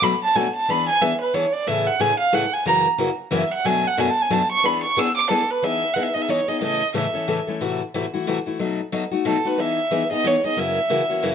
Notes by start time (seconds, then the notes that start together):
0.02 B2 F#3 A3 D4 F#4 B5
0.24 A5
0.35 B2 F#3 A3 D4 F#4 G#5
0.56 A5
0.68 E3 B3 D4 G#4 B5
0.89 G#5
1.01 E3 B3 D4 G#4 E5
1.21 B4
1.34 E3 B3 D4 G#4 C#5
1.52 D5
1.67 A2 C#3 E3 A3 C#4 G#4 E5
1.87 F#5
2.00 A2 C#3 E3 A3 C#4 G#4 G#5
2.20 F5
2.33 A2 C#3 E3 A3 C#4 G#4 F#5
2.53 G#5
2.66 F#2 C#3 E3 A#3 C#4 F#4 A#5
2.98 F#2 C#3 E3 A#3 C#4 F#4
3.31 F#2 C#3 E3 A#3 C#4 F#4
3.35 E5
3.54 F#5
3.65 F#2 B2 F#3 A3 D4 F#4 G#5
3.87 F#5
3.97 F#2 B2 F#3 A3 D4 F#4 G#5
4.10 A5
4.22 G#5
4.30 F#2 B2 F#3 A3 D4 F#4 A5
4.52 C#6
4.63 E3 B3 D4 G#4 B5
4.84 C#6
4.97 E3 B3 D4 G#4 E6
5.17 D6
5.30 E3 B3 D4 G#4 A4
5.51 B4
5.62 E3 B3 D#4 G#4 E5
5.93 E3 B3 D#4 G#4 F#5
6.03 E5
6.14 B3 D#4 G#4 D#5
6.22 E5
6.29 E3 B3 D#4 G#4 C#5
6.48 B3 D#4 G#4 D#5
6.61 A2 C#3 E3 A3 C#4 A4 D#5
6.94 A2 C#3 E3 A3 C#4 A4 E5
7.14 E3 A3 C#4 A4
7.28 A2 C#3 E3 A3 C#4 A4
7.47 E3 A3 C#4 A4
7.61 A2 C3 E3 A3 E4 F#4
7.94 A2 C3 E3 A3 E4 F#4
8.13 E3 A3 E4 F#4
8.27 A2 C3 E3 A3 E4 F#4
8.46 E3 A3 E4 F#4
8.59 B2 F#3 A3 D#4 F#4
8.92 B2 F#3 A3 D#4 F#4
9.11 A3 D#4 F#4
9.25 B2 F#3 A3 D#4 F#4 A4
9.45 A3 D#4 F#4 B4
9.58 E3 B3 D#4 G#4 E5
9.91 E3 B3 D#4 G#4
10.11 B3 D#4 G#4 D#5
10.24 E3 B3 D#4 G#4 C#5
10.44 B3 D#4 G#4 D#5
10.57 F#2 C#3 E3 A#3 C#4 F#4 E5
10.90 F#2 C#3 E3 A#3 C#4 F#4
11.09 E3 A#3 C#4 F#4
11.23 F#2 C#3 E3 A#3 C#4 F#4